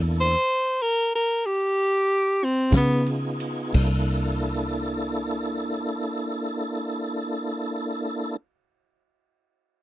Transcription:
Already playing: fingered electric bass E2, tonewheel organ A#3 D4 E4 A4
0.21 tenor saxophone C5
0.82 tenor saxophone A#4
1.15 tenor saxophone A#4
1.46 tenor saxophone G4
2.44 tenor saxophone C4
2.70 fingered electric bass C#3, tonewheel organ B3 D#4 F4 G#4, kick, snare, ride
2.76 tenor saxophone B3
3.06 ride
3.40 ride
3.72 fingered electric bass C2, tonewheel organ A#3 D4 E4 A4, kick, crash

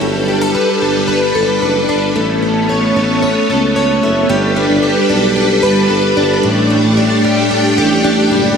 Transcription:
Already playing: string machine A4
0.01 tuba G1, string machine G3 D4 B4, twelve-string acoustic guitar G3
0.28 twelve-string acoustic guitar G4
0.42 twelve-string acoustic guitar A4
0.55 twelve-string acoustic guitar B4
0.82 tuba G1, twelve-string acoustic guitar A4
1.08 twelve-string acoustic guitar B4
1.35 tuba G1, twelve-string acoustic guitar A4
1.62 tuba F#1, twelve-string acoustic guitar B4
1.89 tuba G1, twelve-string acoustic guitar D4
2.15 tuba A1, twelve-string acoustic guitar A3, string machine A3 B3 C#4
2.43 twelve-string acoustic guitar A4
2.69 twelve-string acoustic guitar C#5
2.96 tuba A1, twelve-string acoustic guitar A4
3.23 twelve-string acoustic guitar C#5
3.49 tuba C#2, twelve-string acoustic guitar A4
3.76 twelve-string acoustic guitar C#5
4.03 tuba F#1, twelve-string acoustic guitar E4
4.28 tuba G1, string machine G3 D4 A4 B4, twelve-string acoustic guitar G3
4.56 twelve-string acoustic guitar D4
4.69 tuba G1
4.83 twelve-string acoustic guitar G4
5.09 tuba B1, twelve-string acoustic guitar D4
5.36 twelve-string acoustic guitar G4
5.63 tuba G1, twelve-string acoustic guitar B4
5.90 tuba G1, twelve-string acoustic guitar G4
6.16 tuba G1, twelve-string acoustic guitar D4
6.43 tuba A1, twelve-string acoustic guitar A2, string machine A3 G4
6.70 twelve-string acoustic guitar G3
6.84 tuba A1
6.97 twelve-string acoustic guitar D4
7.24 twelve-string acoustic guitar G3
7.51 twelve-string acoustic guitar D4
7.78 tuba A1, twelve-string acoustic guitar G4
8.04 twelve-string acoustic guitar D4
8.31 tuba F#1, twelve-string acoustic guitar G3

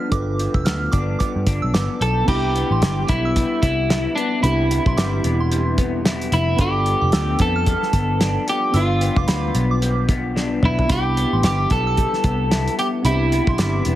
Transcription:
Already playing: clean electric guitar G2 F3 B3 D4
0.10 picked electric bass G1, clean electric guitar G2, tine electric piano D4 F4 A4, synth bell D6, kick, closed hi-hat
0.15 tine electric piano B4
0.39 clean electric guitar F3, closed hi-hat
0.54 picked electric bass F1, synth bell E6, kick
0.65 picked electric bass D2, clean electric guitar B3, synth bell F6, snare, closed hi-hat
0.92 picked electric bass G1, clean electric guitar D4, synth bell D6, kick, closed hi-hat
1.19 clean electric guitar B3, synth bell D6, kick, closed hi-hat
1.36 picked electric bass G2
1.47 picked electric bass G1, clean electric guitar D4, kick, closed hi-hat
1.62 picked electric bass B1, synth bell E6
1.73 picked electric bass G1, clean electric guitar B3, synth bell D6, snare, closed hi-hat
2.01 picked electric bass B1, clean electric guitar F3 A4, closed hi-hat
2.25 picked electric bass C2, tine electric piano B3 D4 E4, clean electric guitar E4 G4, synth bell B5, kick, crash
2.30 tine electric piano G4
2.55 clean electric guitar B3, closed hi-hat
2.70 picked electric bass A1, synth bell C6
2.81 picked electric bass G1, clean electric guitar G3, synth bell D6, snare, closed hi-hat
3.08 picked electric bass B1, clean electric guitar B3 E4, kick, closed hi-hat
3.25 synth bell E6
3.36 clean electric guitar G3, kick, closed hi-hat
3.62 picked electric bass C2, clean electric guitar B3 E4, kick, closed hi-hat
3.90 clean electric guitar E4, snare, closed hi-hat
4.15 clean electric guitar B3 D4, closed hi-hat
4.41 picked electric bass C2, clean electric guitar C3 E4, tine electric piano B3 D4 E4, synth bell B5, closed hi-hat
4.46 tine electric piano G4
4.71 clean electric guitar B3, closed hi-hat
4.86 picked electric bass B1, synth bell C6, kick
4.97 picked electric bass G1, clean electric guitar G3, synth bell D6, snare, closed hi-hat
5.24 picked electric bass E1, clean electric guitar B3, closed hi-hat
5.40 synth bell C6
5.52 clean electric guitar G3, closed hi-hat
5.78 clean electric guitar B3, kick, closed hi-hat
6.05 clean electric guitar E4, snare, closed hi-hat
6.21 closed hi-hat
6.32 picked electric bass F1, clean electric guitar B3 E4, closed hi-hat
6.56 picked electric bass G1, clean electric guitar G2 D4, tine electric piano B3 D4 F4, synth bell B5, kick, closed hi-hat
6.61 clean electric guitar G4, tine electric piano A4
6.86 clean electric guitar B3, closed hi-hat
7.01 picked electric bass F1, synth bell D6
7.12 picked electric bass D2, clean electric guitar F3, synth bell E6, snare, closed hi-hat
7.39 picked electric bass F2, clean electric guitar B3 A4, kick, closed hi-hat
7.56 synth bell F6
7.66 clean electric guitar F3, kick, closed hi-hat
7.83 snare
7.93 picked electric bass G1, clean electric guitar B3, kick, closed hi-hat
8.20 clean electric guitar D4, snare, closed hi-hat
8.47 clean electric guitar B3 G4, closed hi-hat
8.72 picked electric bass G1, clean electric guitar G2 D4, tine electric piano B3 D4 F4, synth bell E6, closed hi-hat
8.76 clean electric guitar F4, tine electric piano B4
9.01 clean electric guitar B3, closed hi-hat
9.16 picked electric bass F1, synth bell D6, kick
9.27 picked electric bass D2, clean electric guitar F3, synth bell B5, snare, closed hi-hat
9.55 picked electric bass B1, clean electric guitar B3, closed hi-hat
9.71 synth bell D6
9.82 clean electric guitar F3, closed hi-hat
10.09 clean electric guitar B3, kick, closed hi-hat
10.36 clean electric guitar D4, snare
10.63 picked electric bass B1, clean electric guitar B3 E4, mid tom
10.79 floor tom
10.88 picked electric bass C2, tine electric piano B3 D4 E4, clean electric guitar E4, synth bell B5, kick, closed hi-hat
10.92 clean electric guitar G4, tine electric piano G4
11.17 clean electric guitar B3, closed hi-hat
11.33 picked electric bass A1, synth bell C6
11.43 picked electric bass G1, clean electric guitar G3 G4, synth bell D6, snare, closed hi-hat
11.70 picked electric bass B1, clean electric guitar B3 A4, kick, closed hi-hat
11.87 synth bell E6
11.97 clean electric guitar G3, kick, closed hi-hat
12.13 snare
12.24 picked electric bass C2, clean electric guitar B3, kick, closed hi-hat
12.51 clean electric guitar E4, snare, closed hi-hat
12.68 closed hi-hat
12.78 clean electric guitar B3 G4, closed hi-hat
13.03 picked electric bass C2, clean electric guitar C3 E4, tine electric piano B3 D4 E4, synth bell B5, closed hi-hat
13.08 tine electric piano G4
13.32 clean electric guitar B3, closed hi-hat
13.47 picked electric bass B1, synth bell C6, kick
13.58 picked electric bass G1, clean electric guitar G3, synth bell D6, snare, closed hi-hat
13.85 picked electric bass E1, clean electric guitar B3, closed hi-hat

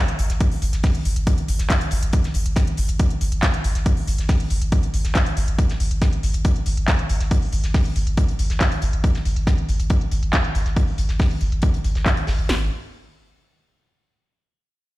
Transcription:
0.08 sub bass G#1, closed hi-hat
0.19 sub bass G#1, closed hi-hat, open hi-hat
0.30 sub bass G#1, snare, closed hi-hat
0.41 kick, closed hi-hat
0.51 sub bass G#1, open hi-hat
0.62 sub bass G#1, closed hi-hat, open hi-hat
0.73 sub bass G#1, snare, closed hi-hat
0.83 kick, snare, closed hi-hat, open hi-hat
0.95 sub bass G#1, closed hi-hat
1.05 sub bass G#1, closed hi-hat, open hi-hat
1.16 sub bass G#1, closed hi-hat
1.27 kick, closed hi-hat
1.38 sub bass G#1, closed hi-hat
1.48 sub bass G#1, closed hi-hat, open hi-hat
1.59 sub bass G#1, snare, closed hi-hat
1.70 kick, snare, clap, closed hi-hat
1.81 sub bass G#1, closed hi-hat
1.91 sub bass G#1, closed hi-hat, open hi-hat
2.03 sub bass G#1, closed hi-hat
2.13 kick, closed hi-hat
2.24 sub bass G#1, snare, closed hi-hat
2.34 sub bass G#1, closed hi-hat, open hi-hat
2.46 sub bass G#1, closed hi-hat
2.56 kick, snare, closed hi-hat
2.67 sub bass G#1, closed hi-hat
2.77 sub bass G#1, closed hi-hat, open hi-hat
2.88 sub bass G#1, closed hi-hat
2.99 kick, closed hi-hat
3.10 sub bass G#1, closed hi-hat
3.21 sub bass G#1, closed hi-hat, open hi-hat
3.32 sub bass G#1, closed hi-hat
3.43 kick, snare, clap, closed hi-hat
3.54 sub bass G#1, closed hi-hat
3.64 sub bass G#1, closed hi-hat, open hi-hat
3.75 sub bass G#1, snare, closed hi-hat
3.86 kick, closed hi-hat
3.97 sub bass G#1, open hi-hat
4.07 sub bass G#1, closed hi-hat, open hi-hat
4.18 sub bass G#1, snare, closed hi-hat
4.29 kick, snare, closed hi-hat, open hi-hat
4.40 sub bass G#1, closed hi-hat
4.50 sub bass G#1, closed hi-hat, open hi-hat
4.62 sub bass G#1, closed hi-hat
4.72 kick, closed hi-hat
4.83 sub bass G#1, closed hi-hat
4.94 sub bass G#1, closed hi-hat, open hi-hat
5.04 sub bass G#1, snare, closed hi-hat
5.15 kick, snare, clap, closed hi-hat
5.26 sub bass G#1, closed hi-hat
5.37 sub bass G#1, closed hi-hat, open hi-hat
5.48 sub bass G#1, closed hi-hat
5.59 kick, closed hi-hat
5.69 sub bass G#1, snare, closed hi-hat
5.80 sub bass G#1, closed hi-hat, open hi-hat
5.91 sub bass G#1, closed hi-hat
6.02 kick, snare, closed hi-hat
6.13 sub bass G#1, closed hi-hat
6.23 sub bass G#1, closed hi-hat, open hi-hat
6.34 sub bass G#1, closed hi-hat
6.45 kick, closed hi-hat
6.56 sub bass G#1, closed hi-hat
6.66 sub bass G#1, closed hi-hat, open hi-hat
6.77 sub bass G#1, closed hi-hat
6.88 kick, snare, clap, closed hi-hat
6.99 sub bass G#1, closed hi-hat
7.09 sub bass G#1, closed hi-hat, open hi-hat
7.20 sub bass G#1, snare, closed hi-hat
7.31 kick, closed hi-hat
7.42 sub bass G#1, open hi-hat
7.52 sub bass G#1, closed hi-hat, open hi-hat
7.64 sub bass G#1, snare, closed hi-hat
7.74 kick, snare, closed hi-hat, open hi-hat
7.85 sub bass G#1, closed hi-hat
7.96 sub bass G#1, closed hi-hat, open hi-hat
8.07 sub bass G#1, closed hi-hat
8.17 kick, closed hi-hat
8.28 sub bass G#1, closed hi-hat
8.39 sub bass G#1, closed hi-hat, open hi-hat
8.50 sub bass G#1, snare, closed hi-hat
8.60 kick, snare, clap, closed hi-hat
8.72 sub bass G#1, closed hi-hat
8.82 sub bass G#1, closed hi-hat, open hi-hat
8.93 sub bass G#1, closed hi-hat
9.04 kick, closed hi-hat
9.14 sub bass G#1, snare, closed hi-hat
9.25 sub bass G#1, closed hi-hat, open hi-hat
9.36 sub bass G#1, closed hi-hat
9.47 kick, snare, closed hi-hat
9.58 sub bass G#1, closed hi-hat
9.69 sub bass G#1, closed hi-hat, open hi-hat
9.80 sub bass G#1, closed hi-hat
9.90 kick, closed hi-hat
10.01 sub bass G#1, closed hi-hat
10.11 sub bass G#1, closed hi-hat, open hi-hat
10.23 sub bass G#1, closed hi-hat
10.32 kick, snare, clap, closed hi-hat
10.44 sub bass G#1, closed hi-hat
10.55 sub bass G#1, closed hi-hat, open hi-hat
10.66 sub bass G#1, snare, closed hi-hat
10.76 kick, closed hi-hat
10.87 sub bass G#1, open hi-hat
10.98 sub bass G#1, closed hi-hat, open hi-hat
11.09 sub bass G#1, snare, closed hi-hat
11.19 kick, snare, closed hi-hat, open hi-hat
11.31 sub bass G#1, closed hi-hat
11.41 sub bass G#1, closed hi-hat, open hi-hat
11.52 sub bass G#1, closed hi-hat
11.62 kick, closed hi-hat
11.74 sub bass G#1, closed hi-hat
11.84 sub bass G#1, closed hi-hat, open hi-hat
11.95 sub bass G#1, snare, closed hi-hat
12.06 kick, snare, clap, closed hi-hat
12.17 sub bass G#1, closed hi-hat
12.27 sub bass G#1, snare, open hi-hat
12.38 sub bass G#1, closed hi-hat
12.49 sub bass G#1, snare, open hi-hat

